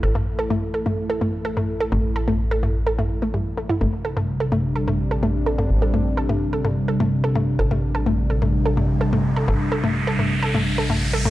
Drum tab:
T2 |-o--o--o--o--o--|o--o--o--o--o--o|o--o--o--o--o--o|--o--o--o--o--o-|

T2 |-o--o--o--o--o--|o--o--o--o--o--o|